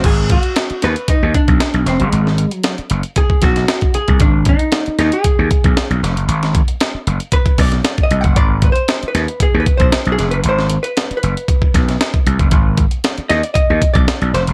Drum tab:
CC |x---------------|----------------|----------------|----------------|
HH |x-xxxxxxx-xxxxxx|x-xxxxxxx-xxxxxx|x-xxxxxxx-xxxxxx|xxxxx-xxxxoxxxxx|
SD |----o-o-----o-o-|-o--o-----ooo---|----o-o-----o-o-|-o--o-----ooo---|
BD |o-o-----o-oo----|--------ooo--o-o|o-o-----o-oo----|--o-----ooo--o-o|

CC |----------------|----------------|----------------|
HH |x-xxxxxxx-xxxxxx|x-xxxxxxx-xxxxxx|x-xxxxxxx-xxxxxx|
SD |----o-o-----o-o-|-o--o-----ooo---|----o-o-----o-o-|
BD |o-o-----o-oo----|--------ooo--o-o|o-o-----o-oo----|